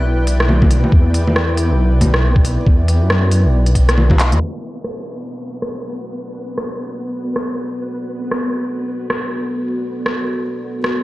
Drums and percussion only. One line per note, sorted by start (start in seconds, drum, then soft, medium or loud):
0.27 open hi-hat medium
0.40 cross-stick loud
0.49 low bongo medium
0.62 kick loud
0.62 low bongo medium
0.71 open hi-hat medium
0.84 low bongo soft
0.92 kick loud
1.14 open hi-hat medium
1.27 low bongo soft
1.36 cross-stick loud
1.57 open hi-hat medium
2.01 kick medium
2.01 open hi-hat medium
2.01 low bongo medium
2.14 cross-stick loud
2.36 kick loud
2.45 open hi-hat medium
2.66 kick loud
2.88 open hi-hat medium
3.10 cross-stick loud
3.31 open hi-hat medium
3.66 closed hi-hat soft
3.75 kick medium
3.75 open hi-hat medium
3.89 cross-stick loud
3.89 closed hi-hat soft
3.98 low bongo medium
4.10 kick loud
4.10 low bongo medium
4.19 clap loud
4.19 open hi-hat medium
4.32 closed hi-hat soft
4.32 low bongo soft
4.84 cross-stick medium
5.62 cross-stick medium
6.58 cross-stick medium
7.36 cross-stick medium
8.31 cross-stick loud
9.10 cross-stick loud
10.06 cross-stick loud
10.84 cross-stick loud